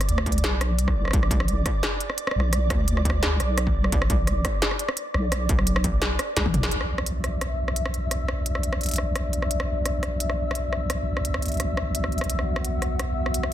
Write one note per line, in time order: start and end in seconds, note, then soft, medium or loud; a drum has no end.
0.00 6.72 D5 medium
0.00 cross-stick medium
0.00 closed hi-hat medium
0.09 0.42 D2 loud
0.09 closed hi-hat medium
0.18 cross-stick medium
0.26 kick medium
0.26 closed hi-hat soft
0.32 closed hi-hat soft
0.38 closed hi-hat medium
0.44 0.95 B1 loud
0.44 cross-stick soft
0.44 snare loud
0.44 closed hi-hat medium
0.61 cross-stick medium
0.61 closed hi-hat medium
0.79 closed hi-hat medium
0.88 kick medium
0.88 cross-stick soft
0.96 1.12 B1 loud
1.05 cross-stick soft
1.08 cross-stick soft
1.11 1.64 B1 medium
1.11 kick loud
1.11 cross-stick medium
1.11 closed hi-hat medium
1.23 cross-stick medium
1.31 kick loud
1.31 closed hi-hat medium
1.40 cross-stick medium
1.48 closed hi-hat medium
1.66 kick medium
1.66 cross-stick soft
1.66 closed hi-hat medium
1.83 cross-stick medium
1.83 snare loud
1.83 closed hi-hat medium
2.00 closed hi-hat medium
2.10 cross-stick soft
2.18 closed hi-hat medium
2.27 cross-stick medium
2.31 cross-stick medium
2.36 2.69 B1 loud
2.40 cross-stick soft
2.53 cross-stick medium
2.53 closed hi-hat medium
2.70 3.39 D2 loud
2.70 kick loud
2.70 cross-stick medium
2.70 closed hi-hat medium
2.88 closed hi-hat medium
2.97 cross-stick soft
3.05 kick medium
3.05 closed hi-hat medium
3.10 cross-stick medium
3.23 snare loud
3.23 closed hi-hat medium
3.40 3.91 B1 medium
3.40 cross-stick medium
3.40 closed hi-hat medium
3.58 cross-stick medium
3.58 closed hi-hat medium
3.67 kick medium
3.84 cross-stick medium
3.92 4.43 B1 medium
3.92 kick loud
3.92 closed hi-hat medium
4.02 cross-stick medium
4.10 kick loud
4.10 closed hi-hat medium
4.27 cross-stick medium
4.27 closed hi-hat medium
4.45 kick medium
4.45 cross-stick medium
4.45 closed hi-hat medium
4.62 snare loud
4.62 closed hi-hat medium
4.71 cross-stick medium
4.79 closed hi-hat medium
4.89 cross-stick medium
4.97 closed hi-hat medium
5.14 5.48 B1 loud
5.14 cross-stick medium
5.32 cross-stick medium
5.32 closed hi-hat medium
5.49 6.18 B1 loud
5.49 kick loud
5.49 closed hi-hat medium
5.59 cross-stick medium
5.67 closed hi-hat medium
5.76 cross-stick medium
5.84 kick medium
5.84 closed hi-hat medium
6.02 cross-stick medium
6.02 snare loud
6.02 closed hi-hat medium
6.19 cross-stick medium
6.19 closed hi-hat medium
6.37 6.70 B1 loud
6.37 snare medium
6.37 closed hi-hat medium
6.46 kick medium
6.46 high tom medium
6.54 closed hi-hat soft
6.54 mid tom medium
6.63 snare medium
6.71 12.28 B1 medium
6.71 13.53 B3 medium
6.71 13.53 F#4 medium
6.71 12.28 D5 medium
6.71 13.53 E5 medium
6.71 closed hi-hat medium
6.81 cross-stick medium
6.98 cross-stick medium
7.06 closed hi-hat medium
7.24 cross-stick soft
7.24 closed hi-hat soft
7.41 cross-stick medium
7.41 closed hi-hat medium
7.68 cross-stick medium
7.76 closed hi-hat medium
7.86 cross-stick medium
7.94 closed hi-hat soft
8.11 cross-stick medium
8.11 closed hi-hat medium
8.28 cross-stick medium
8.46 closed hi-hat medium
8.55 cross-stick soft
8.63 closed hi-hat soft
8.73 cross-stick medium
8.81 closed hi-hat soft
8.83 closed hi-hat soft
8.86 closed hi-hat soft
8.89 closed hi-hat soft
8.91 closed hi-hat medium
8.94 closed hi-hat medium
8.96 cross-stick medium
8.96 closed hi-hat medium
9.16 cross-stick medium
9.16 closed hi-hat medium
9.33 closed hi-hat soft
9.42 cross-stick soft
9.51 closed hi-hat medium
9.60 cross-stick medium
9.86 cross-stick soft
9.86 closed hi-hat medium
10.03 cross-stick medium
10.03 closed hi-hat soft
10.20 closed hi-hat medium
10.30 cross-stick soft
10.51 cross-stick medium
10.55 closed hi-hat medium
10.73 cross-stick soft
10.90 cross-stick medium
10.90 closed hi-hat medium
11.17 cross-stick soft
11.25 closed hi-hat medium
11.34 cross-stick medium
11.42 closed hi-hat soft
11.46 closed hi-hat soft
11.48 closed hi-hat soft
11.52 closed hi-hat soft
11.54 closed hi-hat soft
11.57 cross-stick soft
11.57 closed hi-hat soft
11.60 closed hi-hat medium
11.77 cross-stick medium
11.95 closed hi-hat medium
12.04 cross-stick soft
12.12 closed hi-hat soft
12.18 cross-stick medium
12.18 closed hi-hat soft
12.24 closed hi-hat soft
12.30 13.53 B1 medium
12.30 13.53 F#5 medium
12.30 closed hi-hat medium
12.39 cross-stick soft
12.56 cross-stick medium
12.65 closed hi-hat medium
12.82 cross-stick soft
12.82 closed hi-hat soft
12.99 cross-stick medium
12.99 closed hi-hat medium
13.26 cross-stick soft
13.34 closed hi-hat medium
13.43 cross-stick medium